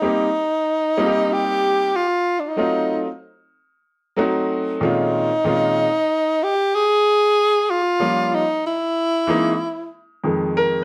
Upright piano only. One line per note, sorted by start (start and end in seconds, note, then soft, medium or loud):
0.02 0.26 G3 medium
0.02 0.27 A#3 medium
0.02 0.27 C4 medium
0.02 0.27 D#4 medium
0.02 0.28 G4 medium
0.97 1.89 G3 medium
0.97 1.89 A#3 medium
0.97 1.89 C4 medium
0.97 1.89 D#4 medium
0.97 1.07 F4 medium
1.06 1.93 G4 medium
2.56 3.05 F#3 medium
2.56 3.05 A3 medium
2.56 3.05 C4 medium
2.56 3.05 D#4 medium
2.56 3.06 F4 medium
4.17 5.08 F#3 medium
4.17 5.08 A3 medium
4.17 4.81 C4 medium
4.17 5.09 D#4 medium
4.17 5.09 F#4 medium
4.81 5.28 A#2 medium
4.81 5.29 D#3 medium
4.81 5.29 G#3 medium
4.81 5.29 C4 medium
4.81 5.29 C#4 medium
4.81 5.30 F4 medium
5.44 5.84 A#2 medium
5.44 5.85 D#3 medium
5.44 5.85 G#3 medium
5.44 5.85 C4 medium
5.44 5.85 C#4 medium
5.44 5.86 F4 medium
8.00 8.40 F3 medium
8.00 8.40 G3 medium
8.00 8.40 A#3 medium
8.00 8.41 C#4 medium
8.00 8.41 F4 medium
9.27 9.52 E3 medium
9.27 9.52 G#3 medium
9.27 9.53 A#3 medium
9.27 9.53 C4 medium
9.27 9.53 D#4 medium
10.24 10.84 F2 soft
10.24 10.84 D#3 soft
10.24 10.84 G#3 medium
10.57 10.84 A#4 medium